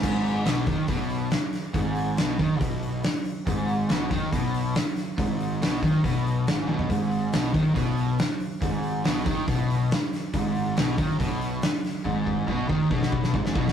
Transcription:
<<
  \new Staff \with { instrumentName = "Overdriven electric guitar" } { \clef bass \time 4/4 \key gis \minor \tempo 4 = 140 gis,4 b,8 dis8 b,4 r4 | gis,4 b,8 dis8 b,4 r4 | gis,4 b,8 dis8 b,4 r4 | gis,4 b,8 dis8 b,4 gis,8 b,8 |
gis,4 b,8 dis8 b,4 r4 | gis,4 b,8 dis8 b,4 r4 | gis,4 b,8 dis8 b,4 r4 | gis,4 b,8 dis8 b,4 gis,8 b,8 | }
  \new Staff \with { instrumentName = "Picked electric bass" } { \clef bass \time 4/4 \key gis \minor gis,,4 b,,8 dis,8 b,,4 r4 | gis,,4 b,,8 dis,8 b,,4 r4 | gis,,4 b,,8 dis,8 b,,4 r4 | gis,,4 b,,8 dis,8 b,,4 gis,,8 b,,8 |
gis,,4 b,,8 dis,8 b,,4 r4 | gis,,4 b,,8 dis,8 b,,4 r4 | gis,,4 b,,8 dis,8 b,,4 r4 | gis,,4 b,,8 dis,8 b,,4 gis,,8 b,,8 | }
  \new DrumStaff \with { instrumentName = "Drums" } \drummode { \time 4/4 <cymc bd>8 hho8 <hho sn>8 <hho bd>8 <hho bd>8 hho8 <hho sn>8 <hho sn>8 | <hho bd>8 hho8 <hho sn>8 <hho bd>8 <hho bd>8 hho8 <hho sn>8 hho8 | <hho bd>8 hho8 <hho sn>8 <hho bd>8 <hho bd>8 hho8 <hho sn>8 <hho sn>8 | <hho bd>8 hho8 <hho sn>8 <hho bd>8 <hho bd>8 hho8 <hho sn>8 tommh16 bd16 |
<hho bd>8 hho8 <hho sn>8 <hho bd>8 <hho bd>8 hho8 <hho sn>8 hho8 | <hho bd>8 hho8 <hho sn>8 <hho bd>8 <hho bd>8 hho8 <hho sn>8 <hho sn>8 | <hho bd>8 hho8 <hho sn>8 <hho bd>8 <hho bd>8 hho8 <hho sn>8 <hho sn>8 | bd8 bd8 bd8 bd8 bd16 sn16 bd16 sn16 bd16 sn16 bd16 sn16 | }
>>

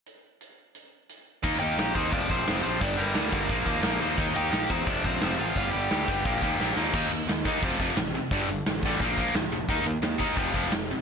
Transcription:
<<
  \new Staff \with { instrumentName = "Overdriven electric guitar" } { \time 4/4 \key ees \lydian \tempo 4 = 174 r1 | r8 <g' g''>4 <c' c''>8 <d' d''>8 <c' c''>4 <c' c''>8 | <d' d''>8 <bes bes'>2. r8 | r8 <g' g''>4 <c' c''>8 <d' d''>8 <c' c''>4 <f' f''>8 |
<f' f''>8 <g' g''>2. r8 | r1 | r1 | r1 | }
  \new Staff \with { instrumentName = "Distorted electric guitar" } { \clef bass \time 4/4 \key ees \lydian r1 | <ees bes ees'>8 <ees bes ees'>8 <ees bes ees'>8 <ees bes ees'>8 <f, c f>8 <f, c f>8 <f, c f>8 <f, c f>8 | <g, d g>8 <g, d g>8 <g, d g>8 <g, d g>8 <bes, f bes>8 <bes, f bes>8 <bes, f bes>8 <bes, f bes>8 | <ees bes ees'>8 <ees bes ees'>8 <ees bes ees'>8 <ees bes ees'>8 <f, c f>8 <f, c f>8 <f, c f>8 <f, c f>8 |
<g, d g>8 <g, d g>8 <g, d g>8 <g, d g>8 <bes, f bes>8 <bes, f bes>8 <bes, f bes>8 <bes, f bes>8 | <ees bes ees'>8 <ees bes>8 <ees bes>8 <ees bes ees'>8 <f, c f>8 <f, c f>8 <f, c>8 <f, c>8 | <g, d g>8 <g, d>8 <g, d>8 <g, d g>8 <bes, f bes>8 <bes, f bes>8 <bes, f>8 <bes, f>8 | <ees bes ees'>8 <ees bes>8 <ees bes>8 <ees bes ees'>8 <f, c f>8 <f, c f>8 <f, c>8 <f, c>8 | }
  \new Staff \with { instrumentName = "Picked electric bass" } { \clef bass \time 4/4 \key ees \lydian r1 | ees,8 ees,8 bes,,8 ees,8 f,,8 bes,,8 f,,8 bes,,8 | g,,8 g,,8 d,8 g,,8 bes,,8 ees,8 bes,,8 ees,8 | ees,8 ees,8 bes,,8 e,8 f,,8 bes,,8 f,,8 a,,8 |
g,,8 g,,8 d,8 g,,8 bes,,8 ees,8 bes,,8 ees,8 | ees,8 ees,8 ees,4 f,,8 f,,8 a,,4 | g,,8 g,,8 a,,4 bes,,4 d,8 f,,8 | ees,8 ees,8 ees,4 f,,8 f,,8 f,,4 | }
  \new DrumStaff \with { instrumentName = "Drums" } \drummode { \time 4/4 hh4 hh4 hh4 hh4 | <hho bd>8 hho8 <hho sn>8 <hho bd>8 <hho bd>8 <hho bd>8 <hho sn>8 hho8 | <hho bd>8 hho8 <hho sn>8 <hho bd>8 <hho bd>8 <hho bd>8 <hho sn>8 hho8 | <hho bd>8 hho8 <hho sn>8 <hho bd>8 <hho bd>8 <hho bd>8 <hho sn>8 hho8 |
<hho bd>8 hho8 <hho sn>8 <hho bd>8 <hho bd>8 <hho bd>8 sn8 sn8 | <cymc bd>8 hho8 <hho sn>8 <hho bd>8 <hho bd>8 <hho bd>8 <hho sn>8 hho8 | <hho bd>8 hho8 <hho sn>8 <hho bd>8 <hho bd>8 <hho bd>8 <hho sn>8 hho8 | <hho bd>8 hho8 <hho sn>8 <hho bd>8 <hho bd>8 <hho bd>8 <hho sn>8 hho8 | }
>>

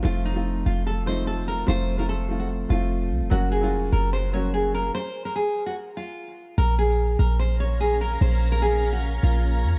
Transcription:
<<
  \new Staff \with { instrumentName = "Ambient pad" } { \time 4/4 \key ges \lydian \tempo 4 = 147 r1 | r1 | r1 | r1 |
<des' bes' f'' bes''>1~ | <des' bes' f'' bes''>1 | }
  \new Staff \with { instrumentName = "Nylon-string guitar" } { \time 4/4 \key ges \lydian f'8 ees'4 f'8 a'8 c''8 a'8 bes'8 | c''8. bes'16 a'8. ges'16 r8 f'4. | ges'8 aes'4 bes'8 c''8 des''8 aes'8 bes'8 | c''8. bes'16 aes'8. ges'16 r8 f'4. |
bes'8 aes'4 bes'8 c''8 des''8 aes'8 bes'8 | c''8. bes'16 aes'8. ges'16 r8 f'4. | }
  \new Staff \with { instrumentName = "Grand piano" } { \time 4/4 \key ges \lydian <f a c' f'>8. <f a c' f'>4.~ <f a c' f'>16 <f a c' ees'>4. | <f a c' f'>8. <f a c' f'>8. <f a c' f'>4 <f a c' f'>4. | <ges bes des' ges'>8. <ges bes des' f'>4.~ <ges bes des' f'>16 <ges bes des' ges'>4. | r1 |
r1 | r1 | }
  \new Staff \with { instrumentName = "808-style bass" } { \clef bass \time 4/4 \key ges \lydian f,,4. f,,2~ f,,8 | f,,2~ f,,8 f,,4 c,16 f,,16 | ges,,4 f,,8 ges,,2~ ges,,8 | r1 |
bes,,4. bes,,2~ bes,,8 | bes,,2~ bes,,8 bes,,4 f,16 bes,,16 | }
>>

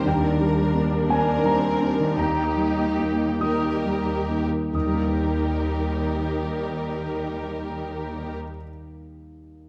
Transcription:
<<
  \new Staff \with { instrumentName = "Violin section" } { \time 6/8 \key ees \major \tempo 4. = 48 << { bes'2.~ | bes'4. bes'4 r8 | bes'2.~ | bes'2. | } \\ { bes'4. bes'4. | g'4. g'4 r8 | g'2.~ | g'2. | } >> }
  \new Staff \with { instrumentName = "Grand piano" } { \time 6/8 \key ees \major g''4. aes''8 bes''4 | bes''4. ees'''4. | <ees, ees g bes ees' bes' ees'''>2.~ | <ees, ees g bes ees' bes' ees'''>2. | }
  \new Staff \with { instrumentName = "Grand piano" } { \time 6/8 \key ees \major ees,8 <g d'>8 <bes d'>8 <bes d'>8 <g d'>8 <bes d'>8 | ees,8 <g ees'>8 <bes ees'>8 <bes ees'>8 <g ees'>8 <bes ees'>8 | r2. | r2. | }
  \new Staff \with { instrumentName = "Viola section" } { \time 6/8 \key ees \major << { d'2. | ees'4. ees'4 r8 | ees'2.~ | ees'2. | } \\ { g4. c'4. | bes4. g4 r8 | g2.~ | g2. | } >> }
  \new Staff \with { instrumentName = "Harp" } { \time 6/8 \key ees \major << { r2. | r2. | <ees g bes ees' bes'>2.~ | <ees g bes ees' bes'>2. | } \\ { <ees g bes d'>2. | <ees g bes ees'>2.~ | <ees g bes ees'>2.~ | <ees g bes ees'>2. | } >> }
  \new Staff \with { instrumentName = "Cello section" } { \clef bass \time 6/8 \key ees \major ees,2.~ | ees,2~ ees,8 r8 | ees,2.~ | ees,2. | }
>>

